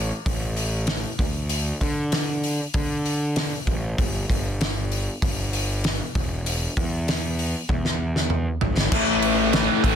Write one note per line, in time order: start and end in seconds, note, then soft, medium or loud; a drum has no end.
0.00 0.11 A1 medium
0.26 1.04 A1 medium
0.26 kick loud
0.26 open hi-hat medium
0.57 open hi-hat soft
0.87 snare loud
0.87 open hi-hat medium
1.19 1.71 D2 medium
1.19 kick medium
1.19 open hi-hat soft
1.49 open hi-hat medium
1.81 2.59 D3 medium
1.81 kick medium
1.81 open hi-hat medium
2.12 snare loud
2.12 open hi-hat medium
2.44 open hi-hat soft
2.74 3.52 D3 medium
2.74 kick loud
2.74 open hi-hat medium
3.06 open hi-hat soft
3.36 snare loud
3.36 open hi-hat medium
3.67 3.93 A1 medium
3.67 kick medium
3.67 open hi-hat soft
3.98 4.24 G1 medium
3.98 kick loud
3.98 open hi-hat medium
4.30 5.07 G1 medium
4.30 kick medium
4.30 open hi-hat soft
4.61 snare loud
4.61 open hi-hat medium
4.92 open hi-hat soft
5.22 5.99 G1 medium
5.22 kick loud
5.22 open hi-hat medium
5.53 open hi-hat medium
5.84 snare loud
5.84 open hi-hat medium
6.15 6.67 E1 medium
6.15 kick loud
6.15 open hi-hat soft
6.46 open hi-hat medium
6.77 7.54 E2 medium
6.77 kick medium
6.77 open hi-hat soft
7.08 snare loud
7.08 open hi-hat medium
7.39 open hi-hat soft
7.69 8.46 E2 medium
7.69 kick loud
7.69 high tom medium
7.85 snare soft
8.16 snare medium
8.30 mid tom medium
8.61 8.87 G#1 medium
8.61 floor tom medium
8.77 snare medium
8.92 9.68 A1 loud
8.92 9.52 A2 loud
8.92 9.53 E3 loud
8.92 9.55 A3 loud
8.92 kick loud
8.92 crash loud
9.22 ride medium
9.53 9.83 A2 medium
9.53 9.83 E3 medium
9.53 9.83 A3 medium
9.53 snare loud
9.53 ride loud
9.84 9.95 A1 medium
9.84 9.95 A2 medium
9.84 9.95 E3 medium
9.84 9.95 A3 loud
9.84 kick medium
9.84 ride medium